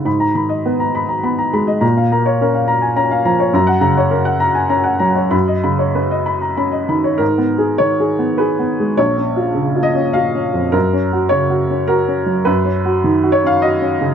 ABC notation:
X:1
M:3/4
L:1/16
Q:1/4=103
K:G#dor
V:1 name="Upright piano"
b a b d B a b a b a b d | a e a c A e a g a e a c | a f a c A f a g a f a c | b d b c B d b a b d b c |
A4 c4 B4 | c6 d2 e4 | A4 c4 A4 | B6 c e d4 |]
V:2 name="Upright piano"
G,,2 D,2 B,4 B,2 G,2 | A,,2 A,2 C4 C2 E,2 | F,,2 C,2 C4 C2 F,2 | F,,2 C,2 C4 C2 D,2 |
(3G,,2 B,2 G2 (3D,2 G2 B,2 (3G2 B,2 G,2 | (3A,,,2 C2 E2 (3C,2 E2 C2 (3E2 C2 E,,2 | (3F,,2 C2 F2 (3C,2 F2 C2 (3F2 C2 F,2 | (3F,,2 C2 F2 (3D,2 F2 C2 (3F2 C2 C,2 |]